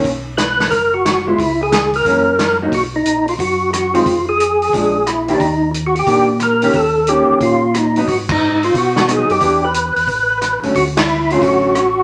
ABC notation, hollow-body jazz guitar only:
X:1
M:4/4
L:1/8
Q:"Swing" 1/4=180
K:B
V:1 name="Hollow-body jazz guitar"
z6 z [G,B,E] | z4 [E,A,C] z2 [F,A,D] | z6 z [D,G,=C] | z4 [^E,G,=D] z2 [^D,A,=D=G] |
z4 [D,A,=D=G] z2 [^D,A,CG] | z2 [D,A,C=G]3 z2 [F,B,D] | z6 [F,B,D]2 | [E,B,=D=G] z6 [=D,F,=A,C] |
z3 [=D,F,=A,C]3 z2 |]